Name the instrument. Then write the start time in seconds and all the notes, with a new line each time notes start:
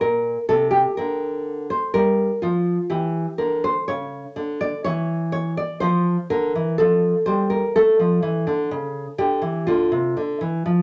nylon-string guitar
0.01 A#2 A#4
0.49 C3 A4
0.71 G4
0.97 D3 A#4
1.70 C5
1.94 G3 A#4
2.42 F3 F4
2.90 E3 G4
3.38 D3 A#4
3.64 C5
3.88 C#3 C#5
4.36 D3
4.61 D5
4.84 E3 C#5
5.32 C#5
5.57 D5
5.80 F3 C5
6.30 D3 A#4
6.55 E3
6.78 F3 A4
7.26 G3 C5
7.50 A#4
7.76 A3 A4
7.99 F3
8.22 E3
8.47 D3
8.71 C#3
9.18 D3 G4
9.42 E3
9.67 D3 F4
9.92 C3
10.17 D3
10.41 E3
10.66 F3